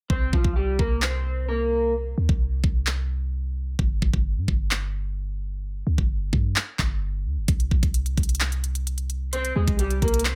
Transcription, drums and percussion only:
0.10 kick loud
0.33 kick loud
0.44 kick loud
0.79 kick medium
1.02 clap loud
2.29 kick loud
2.64 kick medium
2.87 clap loud
3.79 kick loud
4.02 kick loud
4.14 kick loud
4.48 kick medium
4.71 clap loud
5.98 kick loud
6.33 kick medium
6.56 clap loud
6.79 kick medium
6.79 clap medium
7.48 kick loud
7.48 closed hi-hat medium
7.60 closed hi-hat medium
7.71 kick loud
7.83 kick loud
7.83 closed hi-hat medium
7.94 closed hi-hat medium
8.06 closed hi-hat medium
8.17 kick medium
8.17 closed hi-hat soft
8.23 closed hi-hat medium
8.29 closed hi-hat medium
8.35 closed hi-hat medium
8.40 clap loud
8.40 closed hi-hat medium
8.52 closed hi-hat medium
8.64 closed hi-hat medium
8.75 closed hi-hat medium
8.87 closed hi-hat medium
8.98 closed hi-hat medium
9.10 closed hi-hat medium
9.33 closed hi-hat medium
9.45 closed hi-hat medium
9.68 kick loud
9.68 closed hi-hat medium
9.79 closed hi-hat medium
9.90 closed hi-hat medium
10.02 kick medium
10.02 closed hi-hat soft
10.08 closed hi-hat medium
10.14 closed hi-hat medium
10.19 closed hi-hat medium
10.25 clap loud
10.25 closed hi-hat medium

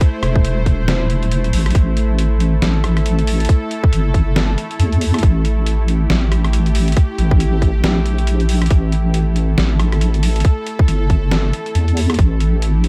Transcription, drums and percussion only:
0.01 kick loud
0.01 closed hi-hat medium
0.23 cross-stick medium
0.23 closed hi-hat medium
0.36 kick loud
0.45 closed hi-hat medium
0.66 kick medium
0.66 closed hi-hat medium
0.88 snare loud
0.88 closed hi-hat medium
1.10 closed hi-hat medium
1.23 closed hi-hat soft
1.32 closed hi-hat medium
1.44 closed hi-hat soft
1.53 open hi-hat loud
1.66 cross-stick medium
1.66 closed hi-hat medium
1.70 closed hi-hat medium
1.75 kick loud
1.75 closed hi-hat medium
1.97 closed hi-hat medium
2.19 closed hi-hat medium
2.40 closed hi-hat medium
2.62 snare loud
2.62 closed hi-hat medium
2.84 cross-stick medium
2.84 closed hi-hat medium
2.97 cross-stick medium
2.97 closed hi-hat soft
3.06 closed hi-hat medium
3.19 closed hi-hat soft
3.27 open hi-hat medium
3.40 closed hi-hat medium
3.45 closed hi-hat medium
3.49 kick loud
3.49 closed hi-hat medium
3.71 closed hi-hat medium
3.84 kick loud
3.93 closed hi-hat medium
4.14 kick medium
4.14 closed hi-hat medium
4.36 snare loud
4.36 closed hi-hat medium
4.58 closed hi-hat medium
4.71 closed hi-hat soft
4.80 closed hi-hat medium
4.92 closed hi-hat soft
5.01 open hi-hat loud
5.14 cross-stick medium
5.14 closed hi-hat medium
5.19 closed hi-hat medium
5.23 kick loud
5.23 closed hi-hat medium
5.45 closed hi-hat medium
5.66 closed hi-hat medium
5.88 closed hi-hat medium
6.10 snare loud
6.10 closed hi-hat medium
6.32 cross-stick medium
6.32 closed hi-hat medium
6.45 cross-stick soft
6.45 closed hi-hat soft
6.53 closed hi-hat medium
6.66 closed hi-hat soft
6.75 open hi-hat medium
6.88 closed hi-hat medium
6.92 closed hi-hat medium
6.97 kick loud
6.97 closed hi-hat medium
7.18 closed hi-hat medium
7.31 kick loud
7.40 closed hi-hat medium
7.62 kick medium
7.62 closed hi-hat medium
7.84 snare loud
7.84 closed hi-hat medium
8.06 closed hi-hat medium
8.18 closed hi-hat soft
8.27 closed hi-hat medium
8.40 closed hi-hat soft
8.49 open hi-hat medium
8.62 cross-stick medium
8.62 closed hi-hat medium
8.66 closed hi-hat medium
8.70 kick loud
8.70 closed hi-hat medium
8.92 closed hi-hat medium
9.14 closed hi-hat medium
9.36 closed hi-hat medium
9.58 snare loud
9.58 closed hi-hat medium
9.80 cross-stick medium
9.80 closed hi-hat medium
9.92 cross-stick soft
9.92 closed hi-hat soft
10.01 closed hi-hat medium
10.14 closed hi-hat soft
10.23 open hi-hat loud
10.36 closed hi-hat soft
10.40 closed hi-hat medium
10.45 kick loud
10.45 closed hi-hat medium
10.67 closed hi-hat medium
10.79 kick loud
10.88 closed hi-hat medium
11.10 kick medium
11.10 closed hi-hat medium
11.31 snare loud
11.31 closed hi-hat medium
11.53 closed hi-hat medium
11.66 closed hi-hat soft
11.75 closed hi-hat medium
11.88 closed hi-hat soft
11.97 open hi-hat loud
12.10 cross-stick medium
12.10 closed hi-hat medium
12.14 closed hi-hat medium
12.19 kick loud
12.19 closed hi-hat medium
12.40 closed hi-hat medium
12.62 closed hi-hat medium
12.84 closed hi-hat medium

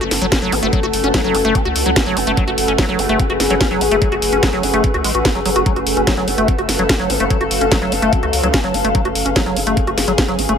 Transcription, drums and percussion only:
0.01 closed hi-hat soft
0.11 snare medium
0.11 open hi-hat loud
0.22 closed hi-hat medium
0.32 kick loud
0.32 snare loud
0.32 closed hi-hat medium
0.42 closed hi-hat soft
0.52 open hi-hat medium
0.63 closed hi-hat medium
0.73 kick loud
0.73 closed hi-hat medium
0.83 closed hi-hat soft
0.93 open hi-hat loud
1.04 closed hi-hat medium
1.14 kick loud
1.14 snare loud
1.14 closed hi-hat medium
1.24 closed hi-hat soft
1.35 open hi-hat loud
1.45 closed hi-hat medium
1.55 kick loud
1.55 closed hi-hat medium
1.65 closed hi-hat soft
1.76 open hi-hat loud
1.86 closed hi-hat medium
1.96 kick loud
1.96 snare loud
1.96 closed hi-hat medium
2.06 closed hi-hat soft
2.17 open hi-hat loud
2.27 closed hi-hat medium
2.37 kick loud
2.37 closed hi-hat medium
2.48 closed hi-hat soft
2.58 open hi-hat loud
2.68 closed hi-hat medium
2.78 kick loud
2.78 snare loud
2.78 closed hi-hat soft
2.89 closed hi-hat soft
2.99 open hi-hat loud
3.09 closed hi-hat medium
3.20 kick loud
3.20 closed hi-hat soft
3.30 closed hi-hat soft
3.40 snare medium
3.40 open hi-hat loud
3.50 closed hi-hat medium
3.61 kick loud
3.61 snare loud
3.61 closed hi-hat soft
3.71 closed hi-hat soft
3.81 open hi-hat loud
3.91 closed hi-hat medium
4.02 kick loud
4.02 closed hi-hat soft
4.12 closed hi-hat soft
4.22 open hi-hat loud
4.33 closed hi-hat soft
4.43 kick loud
4.43 snare loud
4.43 closed hi-hat medium
4.53 closed hi-hat soft
4.63 open hi-hat medium
4.74 closed hi-hat soft
4.84 kick loud
4.84 closed hi-hat soft
4.94 closed hi-hat soft
5.04 open hi-hat loud
5.15 closed hi-hat soft
5.25 kick loud
5.25 snare loud
5.25 closed hi-hat medium
5.35 closed hi-hat soft
5.46 open hi-hat medium
5.56 closed hi-hat medium
5.66 kick loud
5.66 closed hi-hat medium
5.76 closed hi-hat soft
5.87 open hi-hat loud
5.97 closed hi-hat soft
6.07 kick loud
6.07 snare loud
6.07 closed hi-hat medium
6.17 closed hi-hat soft
6.28 open hi-hat medium
6.38 closed hi-hat medium
6.48 kick loud
6.48 closed hi-hat soft
6.59 closed hi-hat soft
6.69 snare medium
6.69 open hi-hat loud
6.79 closed hi-hat medium
6.89 kick loud
6.89 snare loud
6.89 closed hi-hat soft
7.00 closed hi-hat soft
7.10 open hi-hat medium
7.20 closed hi-hat medium
7.30 kick loud
7.30 closed hi-hat medium
7.41 closed hi-hat soft
7.51 open hi-hat loud
7.61 closed hi-hat medium
7.72 kick loud
7.72 snare loud
7.72 closed hi-hat medium
7.82 closed hi-hat soft
7.92 open hi-hat medium
8.02 closed hi-hat medium
8.13 kick loud
8.13 closed hi-hat soft
8.23 closed hi-hat soft
8.33 open hi-hat loud
8.43 closed hi-hat medium
8.54 kick loud
8.54 snare loud
8.54 closed hi-hat medium
8.64 closed hi-hat soft
8.74 open hi-hat medium
8.85 closed hi-hat medium
8.95 kick loud
8.95 closed hi-hat medium
9.05 closed hi-hat soft
9.15 open hi-hat loud
9.26 closed hi-hat medium
9.36 kick loud
9.36 snare loud
9.36 closed hi-hat medium
9.46 closed hi-hat soft
9.57 open hi-hat medium
9.67 closed hi-hat medium
9.77 kick loud
9.77 closed hi-hat medium
9.87 closed hi-hat soft
9.98 snare medium
9.98 open hi-hat loud
10.08 closed hi-hat medium
10.18 kick loud
10.18 snare loud
10.18 closed hi-hat medium
10.28 closed hi-hat soft
10.39 open hi-hat medium
10.49 closed hi-hat medium

